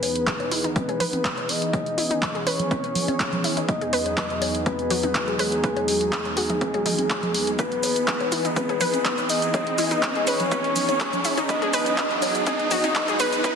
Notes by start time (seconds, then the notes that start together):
Already playing: E3 B3 D#4 G#4 B4, riser
0.03 open hi-hat, high bongo
0.16 closed hi-hat
0.27 G#4, kick, clap, closed hi-hat
0.40 closed hi-hat, high bongo
0.51 E4, open hi-hat
0.64 D#4, closed hi-hat
0.76 B4, kick, closed hi-hat, high conga
0.89 G#4, closed hi-hat, high bongo
1.00 B4, open hi-hat, low conga
1.13 closed hi-hat, high conga
1.24 B4, kick, clap, closed hi-hat
1.38 closed hi-hat, high bongo
1.49 D#5, open hi-hat
1.62 closed hi-hat
1.73 C#4 G#4, kick, closed hi-hat, high bongo
1.86 closed hi-hat
1.98 E4, open hi-hat
2.11 D#4, closed hi-hat
2.22 B4, kick, clap, closed hi-hat, high bongo
2.35 G#4, closed hi-hat
2.47 B4 C#5, open hi-hat
2.60 closed hi-hat, low conga
2.71 B4, kick, closed hi-hat, high bongo, high conga
2.84 closed hi-hat
2.95 open hi-hat, low conga
3.08 closed hi-hat, high bongo, high conga
3.20 G#4, kick, clap, closed hi-hat
3.33 closed hi-hat, low conga
3.44 E4, open hi-hat
3.57 D#4, closed hi-hat, high bongo
3.69 E2 F#3 D#4 B4 D#5, kick, closed hi-hat
3.81 G#4, closed hi-hat
3.93 B4, open hi-hat
4.06 closed hi-hat, high bongo
4.17 B4, kick, clap, closed hi-hat
4.30 closed hi-hat
4.42 open hi-hat, high bongo
4.55 closed hi-hat
4.66 G#4 B4, kick, closed hi-hat, high conga
4.79 closed hi-hat
4.90 F#4, open hi-hat, high bongo, low conga
5.03 D#4, closed hi-hat, high conga
5.15 B4, kick, clap, closed hi-hat
5.28 G#4, closed hi-hat
5.39 G#4 B4, open hi-hat, high bongo
5.52 closed hi-hat
5.64 B4, kick, closed hi-hat
5.77 closed hi-hat, high bongo
5.88 open hi-hat
6.01 closed hi-hat
6.12 G#4, kick, clap, closed hi-hat
6.25 closed hi-hat, high bongo
6.37 F#4 G#4, open hi-hat
6.50 D#4, closed hi-hat, low conga
6.61 B4, kick, closed hi-hat, high conga
6.74 G#4, closed hi-hat, high bongo
6.86 D#4, open hi-hat, low conga
6.99 closed hi-hat, high conga
7.10 G#4, kick, clap, closed hi-hat, high bongo
7.23 closed hi-hat, low conga
7.34 open hi-hat
7.47 closed hi-hat
7.59 E3 B3 D#4 G#4 B4, kick, closed hi-hat, shaker
7.72 closed hi-hat
7.83 open hi-hat, high bongo, shaker
7.96 closed hi-hat, shaker
8.07 G#4, kick, clap, closed hi-hat, shaker
8.20 closed hi-hat, high bongo
8.32 E4, open hi-hat, shaker
8.45 D#4, closed hi-hat, shaker
8.56 B4, kick, closed hi-hat, high conga, shaker
8.69 G#4, closed hi-hat, high bongo
8.81 B4, open hi-hat, low conga, shaker
8.94 closed hi-hat, high conga, shaker
9.05 B4, kick, clap, closed hi-hat, shaker
9.18 closed hi-hat, high bongo, shaker
9.29 D#5, open hi-hat, shaker
9.42 closed hi-hat, shaker
9.54 G#4, kick, closed hi-hat, high bongo, shaker
9.67 closed hi-hat
9.78 E4, open hi-hat, shaker
9.91 D#4, closed hi-hat, shaker
10.03 B4, kick, clap, closed hi-hat, high bongo, shaker
10.15 G#4, closed hi-hat
10.27 B4 C#5, open hi-hat, shaker
10.40 closed hi-hat, low conga, shaker
10.51 B4, kick, closed hi-hat, high bongo, high conga, shaker
10.64 closed hi-hat
10.76 open hi-hat, low conga, shaker
10.89 closed hi-hat, high bongo, high conga, shaker
11.00 G#4, kick, clap, closed hi-hat, shaker
11.13 closed hi-hat, low conga, shaker
11.25 E4, open hi-hat, shaker
11.37 D#4, closed hi-hat, high bongo, shaker
11.49 E2 F#3 B3 G#4 B4 D#5, kick, closed hi-hat, shaker
11.62 G#4, closed hi-hat
11.73 B4, open hi-hat, shaker
11.86 closed hi-hat, high bongo, shaker
11.98 B4, kick, clap, closed hi-hat, shaker
12.11 closed hi-hat
12.22 open hi-hat, high bongo, shaker
12.35 closed hi-hat, shaker
12.47 G#4 D#5, kick, closed hi-hat, high conga, shaker
12.59 closed hi-hat
12.71 F#4, open hi-hat, high bongo, low conga, shaker
12.84 D#4, closed hi-hat, high conga, shaker
12.95 B4, kick, clap, closed hi-hat, shaker
13.08 G#4, closed hi-hat, shaker
13.20 B4, open hi-hat, high bongo, shaker
13.33 closed hi-hat, shaker
13.44 B4, kick, closed hi-hat, shaker